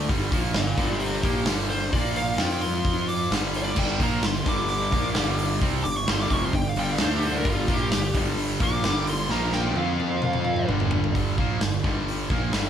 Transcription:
0.09 G1 G2 D3 G3, kick, open hi-hat
0.31 A#1 A#2 F3 A#3, kick, open hi-hat
0.54 G1 G2 D3 D5 F5, snare, open hi-hat
0.77 G1 G2 D3 G3 F4 D5, kick, open hi-hat
1.00 G4 C5, open hi-hat
1.22 A#1 A#2 F3 A#3 G4, kick, open hi-hat
1.46 G1 G2 D3 G3, snare, open hi-hat
1.69 C5, open hi-hat
1.92 A#1 A#2 F3 A#3 D5, kick, open hi-hat
2.16 F5, open hi-hat
2.37 F2 F3 C4 F4 G5, snare, open hi-hat
2.61 C6, open hi-hat
2.85 kick, open hi-hat
3.09 D6, open hi-hat
3.31 G1 G2 D3 G3, snare, open hi-hat
3.54 D5, open hi-hat
3.75 G1 G2 D3 G3 G5, kick, crash
3.99 A#1 A#2 F3 A#3 A#5, kick, open hi-hat
4.22 G1 G2 D3 C6, snare, open hi-hat
4.45 G1 G2 D3 G3 D6, kick, open hi-hat
4.68 D6, open hi-hat
4.91 A#1 A#2 F3 A#3, kick, open hi-hat
5.15 G1 G2 D3 G3, snare, open hi-hat
5.39 open hi-hat
5.61 C2 C3 G3 C4, kick, open hi-hat
5.84 G1 G2 D3 D6, open hi-hat
5.97 C#6
6.08 G1 G2 D3 G3 C6, snare, open hi-hat
6.21 D6
6.30 F1 F2 C3 F3 C#6, kick, open hi-hat
6.45 C6
6.53 G1 G2 D3 G5, kick, open hi-hat
6.69 F5
6.76 G1 G2 D3 G3 G5, open hi-hat
6.92 F5
6.98 D2 D3 A3 D4, snare, open hi-hat
7.03 C5
7.16 G4
7.22 C5, open hi-hat
7.38 A#4
7.45 G1 G2 D3 G3, kick, open hi-hat
7.50 F4
7.68 A#1 A#2 F3 A#3, kick, open hi-hat
7.73 G4
7.91 G1 G2 D3, snare, open hi-hat
8.14 G1 G2 D3 G3, kick, open hi-hat
8.38 open hi-hat
8.60 A#1 A#2 F3 A#3 D6, kick, open hi-hat
8.83 G1 G2 D3 G3, snare, open hi-hat
9.07 C6, open hi-hat
9.29 A#1 A#2 F3 A#3 A#5, snare
9.52 G5, snare
9.75 F2 F3 C4 F4 F5, high tom
10.00 high tom
10.22 mid tom
10.33 mid tom
10.45 mid tom
10.56 mid tom
10.69 G1 G2 D3 G3, mid tom
10.80 floor tom
10.91 floor tom
11.04 floor tom
11.14 G1 G2 D3 G3, kick, open hi-hat
11.37 A#1 A#2 F3 A#3, kick
11.60 G1 G2 D3, snare, open hi-hat
11.84 G1 G2 D3 G3, kick
12.08 open hi-hat
12.30 A#1 A#2 F3 A#3, kick
12.53 G1 G2 D3 G3, snare, open hi-hat

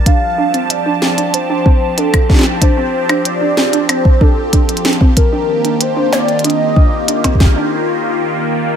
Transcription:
Already playing: D4 A5
0.06 F3 D4 F5, kick, closed hi-hat
0.24 C4
0.34 G4
0.38 D4
0.54 C4, closed hi-hat
0.70 D5, closed hi-hat
0.86 D4
1.02 snare
1.18 D4, closed hi-hat
1.34 C5, closed hi-hat
1.50 D4
1.66 C4, kick
1.98 D4 A4, closed hi-hat
2.14 kick, closed hi-hat, percussion blips
2.29 D4, kick, snare
2.32 snare
2.34 snare
2.37 snare
2.39 snare
2.41 snare
2.43 snare
2.61 D4 C5, kick, closed hi-hat
2.77 C4
3.09 D4, closed hi-hat, percussion blips
3.25 D5, closed hi-hat
3.41 D4
3.57 snare
3.73 D4, closed hi-hat
3.89 C4 C5, closed hi-hat, percussion blips
4.05 kick
4.21 D4 A4, kick
4.53 D4, kick, closed hi-hat
4.69 closed hi-hat
4.77 closed hi-hat
4.85 D4, snare, closed hi-hat
4.93 closed hi-hat
5.01 C4, kick
5.17 D#3 A#4, kick, closed hi-hat
5.32 A#3 D4
5.65 D4, closed hi-hat
5.81 C5, closed hi-hat
5.87 F4
5.96 D4
6.12 C4 D5, snare
6.29 closed hi-hat
6.39 closed hi-hat
6.44 D4 D#5, closed hi-hat
6.50 closed hi-hat
6.76 D4, kick
7.08 D4, closed hi-hat
7.24 C4, kick, closed hi-hat, percussion blips
7.35 kick
7.40 kick, snare
7.46 kick
7.56 D4

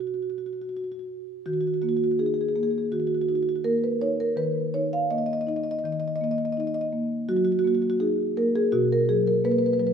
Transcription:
Already playing: B2 A#3 D#4
0.00 F#4
0.07 F#4
0.14 F#4
0.22 F#4
0.30 F#4
0.38 F#4
0.46 F#4
0.53 F#4
0.62 F#4
0.69 F#4
0.77 F#4
0.84 F#4
0.92 F#4
0.99 F#4
1.46 D#3 F#4
1.53 F#4
1.61 F#4
1.67 F#4
1.74 F#4
1.82 A#3 F#4
1.89 F#4
1.97 F#4
2.04 F#4
2.11 F#4
2.19 D#4 G#4
2.26 G#4
2.34 G#4
2.41 G#4
2.49 G#4
2.55 A#3 G#4
2.63 G#4
2.71 G#4
2.78 G#4
2.92 D#3 F#4
3.00 F#4
3.07 F#4
3.15 F#4
3.21 F#4
3.29 D#4 F#4
3.35 F#4
3.43 F#4
3.49 F#4
3.56 F#4
3.64 A#3 A#4
3.84 B4
4.01 D#4 C#5
4.20 A#4
4.36 D#3 B4
4.74 D#4 C#5
4.93 F5
5.11 A#3 D#5
5.18 D#5
5.26 D#5
5.33 D#5
5.41 D#5
5.47 D#4 D#5
5.56 D#5
5.63 D#5
5.71 D#5
5.79 D#5
5.84 D#3 D#5
5.92 D#5
6.00 D#5
6.08 D#5
6.16 D#5
6.21 A#3 D#5
6.31 D#5
6.38 D#5
6.45 D#5
6.52 D#5
6.57 D#4 D#5
6.67 D#5
6.74 D#5
6.81 D#5
6.93 A#3
7.29 F#3 F#4
7.36 F#4
7.45 F#4
7.52 F#4
7.59 F#4
7.64 A#3 F#4
7.75 F#4
7.82 F#4
7.90 F#4
8.00 D#4 G#4
8.37 A#3 A#4
8.56 G#4
8.72 B2 F#4
8.92 A#4
9.09 F#3 G#4
9.27 A#4
9.44 A#3 B4
9.51 B4
9.59 B4
9.66 B4
9.73 B4
9.79 F#3 B4
9.87 B4

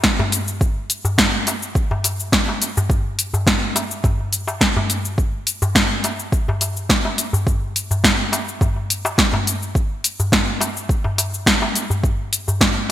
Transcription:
0.04 kick, snare, cabasa
0.19 darbuka tek, darbuka dum
0.32 closed hi-hat, cabasa
0.48 cabasa
0.61 kick, cabasa
0.90 closed hi-hat, cabasa
1.05 darbuka dum, cabasa
1.18 kick, snare, cabasa
1.47 closed hi-hat, darbuka tek, cabasa
1.62 cabasa
1.75 kick, cabasa
1.91 darbuka tek, darbuka dum
2.04 closed hi-hat, darbuka ka, cabasa
2.20 cabasa
2.32 kick, snare, cabasa
2.48 darbuka ka, darbuka tek
2.62 closed hi-hat, darbuka tek, cabasa
2.77 darbuka dum, cabasa
2.90 kick, cabasa
3.19 closed hi-hat, cabasa
3.34 darbuka ka, darbuka dum, cabasa
3.47 kick, snare, cabasa
3.76 closed hi-hat, darbuka tek, cabasa
3.91 cabasa
4.04 kick, darbuka ka, darbuka dum, cabasa
4.20 darbuka ka
4.33 closed hi-hat, cabasa
4.48 darbuka tek, cabasa
4.61 kick, snare, cabasa
4.76 darbuka tek, darbuka dum
4.90 closed hi-hat, cabasa
5.05 cabasa
5.18 kick, cabasa
5.47 closed hi-hat, cabasa
5.62 darbuka dum, cabasa
5.75 kick, snare, cabasa
6.04 closed hi-hat, darbuka tek, cabasa
6.19 cabasa
6.32 kick, cabasa
6.48 darbuka tek, darbuka dum
6.61 closed hi-hat, darbuka ka, cabasa
6.77 cabasa
6.89 kick, snare, cabasa
7.05 darbuka ka, darbuka tek
7.18 closed hi-hat, darbuka tek, cabasa
7.33 darbuka dum, cabasa
7.47 kick, cabasa
7.76 closed hi-hat, cabasa
7.91 darbuka ka, darbuka dum, cabasa
8.04 kick, snare, cabasa
8.33 closed hi-hat, darbuka tek, cabasa
8.48 cabasa
8.61 kick, darbuka ka, darbuka dum, cabasa
8.76 darbuka ka
8.90 closed hi-hat, cabasa
9.05 darbuka tek, cabasa
9.18 kick, snare, cabasa
9.33 darbuka tek, darbuka dum
9.47 closed hi-hat, cabasa
9.63 cabasa
9.75 kick, cabasa
10.04 closed hi-hat, cabasa
10.20 darbuka dum, cabasa
10.32 kick, snare, cabasa
10.61 closed hi-hat, darbuka tek, cabasa
10.77 cabasa
10.89 kick, cabasa
11.04 darbuka tek, darbuka dum
11.18 closed hi-hat, darbuka ka, cabasa
11.34 cabasa
11.46 kick, snare, cabasa
11.62 darbuka ka, darbuka tek
11.75 closed hi-hat, darbuka tek, cabasa
11.90 darbuka dum, cabasa
12.04 kick, cabasa
12.33 closed hi-hat, cabasa
12.48 darbuka ka, darbuka dum, cabasa
12.61 kick, snare, cabasa

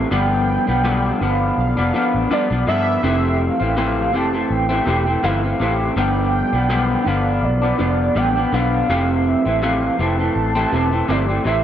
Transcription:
Already playing: C3 E3 A3 C4
0.10 G1 G2 D3 F3 B3 D4 G5
0.67 B1 F3 B3 D4
0.84 G2 D3 F3 B3 D4
1.20 G1 D3 F3 B3 D4 F5
1.58 B1 F5
1.77 F1 F3 B3 D4
1.93 D3 F3 B3 D4
2.14 A1
2.30 G2 D3 F3 B3 D4 D5, muted fingered electric bass stroke
2.50 B1 F3 B3 D4
2.67 G2 D3 F3 B3 D4 E5
3.03 F1 F2 C3 E3 A3 C4
3.42 F5
3.60 A1 E3 A3 C4
3.76 F2 C3 E3 A3 C4
4.13 F1 C3 E3 A3 C4 A5
4.33 E3 A3 C4
4.50 A1 G5
4.69 E3 A3 C4
4.86 E1 C3 E3 A3 C4
5.06 E3 A3 C4
5.23 G1 F2 C3 E3 A3 C4 F5
5.43 E3 A3 C4
5.60 A1 C3 E3 A3 C4
5.96 G1 G2 D3 F3 B3 D4 G5
6.53 B1 F3 B3 D4
6.69 G2 D3 F3 B3 D4
7.05 G1 D3 F3 B3 D4 F5
7.43 B1 D5
7.62 F3 B3 D4
7.78 F1 D3 F3 B3 D4
8.15 A1 G2 D3 F3 B3 D4 G5
8.36 F3 B3 D4
8.52 B1 D3 F3 B3 D4 F5
8.89 F1 F2 C3 E3 A3 C4
9.27 E5
9.45 A1 E3 A3 C4
9.62 F2 C3 E3 A3 C4 F5
9.99 F1 C3 E3 A3 C4 A5
10.19 E3 A3 C4
10.36 A1
10.55 E3 A3 C4
10.72 E1 C3 E3 A3 C4
10.91 E3 A3 C4
11.08 G1 F2 C3 E3 A3 C4 D5
11.28 E3 A3 C4
11.45 A1 C3 E3 A3 C4 E5

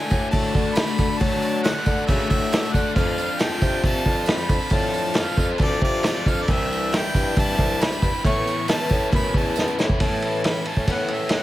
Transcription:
Already playing: D3 A3 D4 A4 D5 F#5 G#5 D6
0.10 A2 A3 D4 F#4, kick, tambourine
0.22 tambourine
0.31 A2 D3 A3 D4 F#4 A4 A5, kick, crash
0.43 tambourine
0.55 D3 F#4, kick
0.65 tambourine
0.75 D3 A3 D4 B5, snare, tambourine, crash
0.80 F#4
0.87 tambourine
0.98 D3 A4, kick, tambourine
1.09 tambourine
1.19 D3 F#3 A3 D4 F#4 A5, kick, tambourine, crash
1.32 tambourine
1.42 D4, tambourine
1.55 tambourine
1.63 D3 A3 D4 A4 F#5, snare, tambourine, crash
1.68 F#4
1.75 tambourine
1.86 D3 A3 D4 F#4, kick, tambourine
1.98 tambourine
2.07 C#3 D3 A3 D4 A4 E5, kick, tambourine, crash
2.11 F#4
2.19 tambourine
2.30 A2 F#4 E5, kick, tambourine
2.42 tambourine
2.52 D3 A3 D4 F#4, snare, tambourine, crash
2.63 tambourine
2.73 D3 A4 F#5, kick, tambourine
2.95 F2 F3 C4 D4 C5 F5 A5, kick, tambourine, crash
2.99 A4
3.07 tambourine
3.18 C4, tambourine
3.29 tambourine
3.39 F3 C4 D4 A4 G5, snare, tambourine, crash
3.62 C3 F4, kick, tambourine
3.73 tambourine
3.83 C3 F3 C4 D4 A4 A5, kick, crash
3.94 tambourine
4.06 F2 F4, kick
4.16 tambourine
4.26 F3 C4 D4 B5, snare, tambourine, crash
4.30 A4
4.38 tambourine
4.49 F2 C4 D4 A4, kick, tambourine
4.60 tambourine
4.70 A2 F3 C4 D4 A4, kick, tambourine, crash
4.74 A5
4.82 tambourine
4.94 C4, tambourine
5.06 tambourine
5.14 F3 C4 D4 F5, snare, tambourine, crash
5.18 A4
5.36 F2 C4 D4 F4 A4, kick, tambourine
5.51 tambourine
5.58 D2 F3 C4 D5, kick, crash
5.62 D4 A4
5.73 tambourine
5.81 C3 F4 D5, kick
5.95 tambourine
6.03 F3 C4, snare, tambourine, crash
6.07 D4 A4
6.26 F2 D4 A4 F5, kick, tambourine
6.30 C4
6.40 D5, tambourine
6.48 C2 C3 E3 G3 D4 E4 C5 E5 G5, kick, tambourine, crash
6.52 E5
6.63 tambourine
6.70 G3, tambourine
6.83 tambourine
6.92 E3 G3 D4 E4, snare, tambourine, crash
6.96 G5
7.14 G2 D4, kick, tambourine
7.27 tambourine
7.36 G2 C3 E3 G3 D4 E4 A5, kick, crash
7.48 tambourine
7.58 C2 D4, kick
7.70 tambourine
7.80 E3 G3 D4 E4 B5, snare, tambourine, crash
7.93 tambourine
8.02 G2 G3 D4 E4, kick, tambourine
8.14 tambourine
8.21 A2 B4 E5 A5 C#6, kick, tambourine, crash
8.26 E3 B3 C#4 E4 C#6
8.36 tambourine
8.45 B3, tambourine
8.59 tambourine
8.68 E3 B3 C#4 E4 A5, snare, tambourine, crash
8.89 A2 B3 C#4 E4, kick, tambourine
9.00 tambourine
9.11 F#2 A2 E3 B3 C#4 E4, kick, tambourine, crash
9.15 B5
9.24 tambourine
9.34 E2 C#4 A5, kick, tambourine
9.46 tambourine
9.56 E3 B3 C#4, snare, tambourine
9.60 E4
9.68 tambourine
9.78 A2 B3 C#4 E4, snare, tambourine
9.89 kick, tambourine
9.97 A2 B4 E5 A5 C#6, kick, ride
10.02 E3 B3 C#4 E4
10.22 E3, ride
10.44 E3 B3 C#4 E4 B5, snare, ride
10.66 B3 C#4 E4 A5, ride
10.77 A2, kick
10.88 A2 E3 B3 C#4 E4, kick, ride
10.92 F#5
11.08 C#4 E4, ride
11.13 B3 E5
11.29 E3, snare, ride
11.35 F#5

